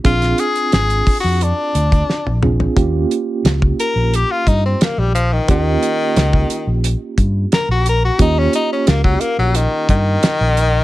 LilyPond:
<<
  \new Staff \with { instrumentName = "Reed electric piano" } { \time 4/4 \key ees \mixolydian \tempo 4 = 88 <c' d' f' aes'>2.~ <c' d' f' aes'>8 <c' d' f' aes'>8 | <bes des' f' g'>1 | <bes des' f' g'>1 | <bes des' f' g'>1 | }
  \new Staff \with { instrumentName = "Tenor saxophone" } { \time 4/4 \key ees \mixolydian f'8 aes'8 \tuplet 3/2 { aes'4 ges'8 } d'4. r8 | r4. bes'8 g'16 f'16 ees'16 c'16 bes16 g16 f16 ees16 | ees2 r4 bes'16 ges'16 bes'16 ges'16 | ees'16 des'16 ees'16 des'16 bes16 ges16 bes16 ges16 ees8 ees4. | }
  \new Staff \with { instrumentName = "Fingered electric bass" } { \clef bass \time 4/4 \key ees \mixolydian bes,,8 r8 aes,,8 r16 f,8 r16 d,8 r16 bes,,8. | ees,8 r8 des,8 r16 bes,,8 r16 g,8 r16 bes,,8. | ees,8 r8 des,8 r16 bes,,8 r16 g,8 r16 bes,,8. | ees,8 r8 des,8 r16 bes,,8 r16 g,8 r16 bes,,8. | }
  \new DrumStaff \with { instrumentName = "Drums" } \drummode { \time 4/4 <hh bd>16 <hh sn>16 hh16 hh16 <hh sn>16 hh16 <hho bd>8 hh8 hh16 <hh bd>16 sn16 tommh16 toml16 tomfh16 | <hh bd>8 hh8 <hh sn>16 bd16 hh8 hh8 <hh bd>8 <hh sn>8 hh8 | <hh bd>8 hh8 <hh sn>16 bd16 hh8 hh8 <hh bd>8 <hh sn>8 hh8 | <hh bd>8 hh8 <hh sn>16 bd16 hh8 hh8 <hh bd>8 <hh sn>8 hh8 | }
>>